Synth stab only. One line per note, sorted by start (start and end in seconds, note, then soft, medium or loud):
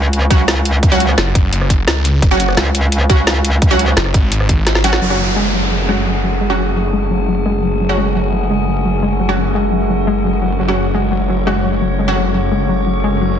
0.00 0.28 F#3 medium
0.00 0.28 C#4 medium
0.00 0.28 F#4 medium
0.31 0.41 F#3 medium
0.31 0.41 C#4 medium
0.31 0.41 F#4 medium
0.92 1.02 F#3 loud
0.92 1.02 C#4 medium
0.92 1.02 F#4 loud
2.31 3.08 F#3 medium
2.31 3.08 C#4 medium
2.31 3.08 F#4 loud
3.10 3.20 F#3 medium
3.10 3.20 C#4 medium
3.10 3.20 F#4 medium
3.71 3.81 F#3 loud
3.71 3.81 C#4 medium
3.71 3.81 F#4 loud
4.84 5.08 F#3 medium
4.84 5.08 C#4 medium
4.84 5.08 F#4 loud
5.10 5.87 F#3 medium
5.10 5.87 C#4 medium
5.10 5.87 F#4 medium
5.89 5.99 F#3 medium
5.89 5.99 C#4 medium
5.89 5.99 F#4 medium
6.50 6.60 F#3 medium
6.50 6.60 C#4 medium
6.50 6.60 F#4 loud
7.89 8.66 F#3 medium
7.89 8.66 C#4 medium
7.89 8.66 F#4 medium
9.29 9.39 F#3 medium
9.29 9.39 C#4 medium
9.29 9.39 F#4 medium
10.68 11.45 F#3 medium
10.68 11.45 C#4 medium
10.68 11.45 F#4 medium
11.47 11.57 F#3 medium
11.47 11.57 C#4 medium
11.47 11.57 F#4 medium
12.08 12.18 F#3 medium
12.08 12.18 C#4 medium
12.08 12.18 F#4 loud